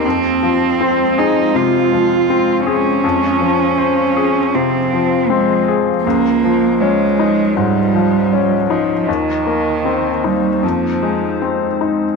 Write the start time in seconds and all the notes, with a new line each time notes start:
0.04 F2 G#3 C4 F4 F5
0.43 F3
0.81 C4
1.18 D#4 G#4
1.55 C3 F4
1.93 F3
2.30 C4
2.66 C#4 G#4
3.03 F2 F3 F4 F5
3.41 F3
3.78 C5
4.17 G#4
4.55 C3 C4
4.93 F3
5.30 G#3 C4
5.68 G#4
6.04 C#2 A#3 D#5
6.44 F3
6.81 G#3 C#4
7.19 D#4
7.56 G#2 G3
7.95 F3
8.33 C#4
8.70 F3 D#4
9.08 D#2 D#3 A#3 D#4 C5
9.47 A#3
9.85 C4
10.24 G3 D#4
10.63 F2 F3 G#3
11.03 G#3
11.42 C4
11.81 D#4